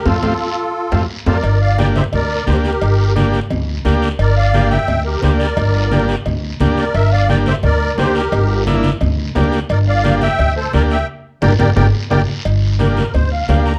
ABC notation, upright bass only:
X:1
M:4/4
L:1/8
Q:1/4=174
K:Gdor
V:1 name="Upright bass" clef=bass
F,, F,, z3 F,, z F,, | G,,,4 D,,2 D,,2 | G,,,4 D,,2 D,,2 | G,,,4 D,,2 D,,2 |
G,,,4 D,,2 D,,2 | G,,,4 D,,2 D,,2 | G,,,4 D,,2 D,,2 | G,,,4 D,,2 D,,2 |
z2 G,,, G,,, G,,, z G,,, z | G,,,4 D,,2 D,,2 |]